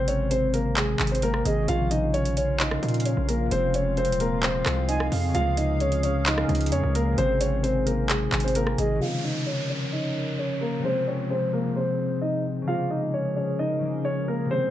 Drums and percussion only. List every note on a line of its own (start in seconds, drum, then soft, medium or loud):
0.08 closed hi-hat medium
0.31 closed hi-hat medium
0.54 closed hi-hat medium
0.77 clap loud
0.77 closed hi-hat medium
1.00 clap loud
1.00 closed hi-hat medium
1.07 closed hi-hat medium
1.15 closed hi-hat medium
1.22 closed hi-hat loud
1.34 cross-stick medium
1.46 closed hi-hat medium
1.68 closed hi-hat medium
1.91 closed hi-hat medium
2.14 closed hi-hat medium
2.26 closed hi-hat medium
2.37 closed hi-hat medium
2.60 clap loud
2.60 closed hi-hat medium
2.71 cross-stick loud
2.83 closed hi-hat soft
2.89 closed hi-hat medium
2.94 closed hi-hat medium
3.00 closed hi-hat medium
3.06 closed hi-hat loud
3.29 closed hi-hat medium
3.51 closed hi-hat medium
3.74 closed hi-hat medium
3.97 closed hi-hat soft
4.05 closed hi-hat medium
4.12 closed hi-hat medium
4.20 closed hi-hat medium
4.43 clap loud
4.43 closed hi-hat medium
4.66 cross-stick medium
4.66 clap loud
4.66 closed hi-hat medium
4.89 closed hi-hat loud
5.00 cross-stick loud
5.12 open hi-hat medium
5.35 closed hi-hat medium
5.57 closed hi-hat medium
5.80 closed hi-hat medium
5.92 closed hi-hat medium
6.03 closed hi-hat medium
6.26 clap loud
6.26 closed hi-hat medium
6.38 cross-stick loud
6.49 closed hi-hat soft
6.55 closed hi-hat medium
6.61 closed hi-hat medium
6.66 closed hi-hat medium
6.72 closed hi-hat loud
6.95 closed hi-hat medium
7.18 closed hi-hat medium
7.41 closed hi-hat medium
7.64 closed hi-hat medium
7.87 closed hi-hat medium
8.10 clap loud
8.10 closed hi-hat medium
8.32 clap loud
8.32 closed hi-hat medium
8.40 closed hi-hat medium
8.48 closed hi-hat medium
8.55 closed hi-hat loud
8.67 cross-stick medium
8.78 closed hi-hat loud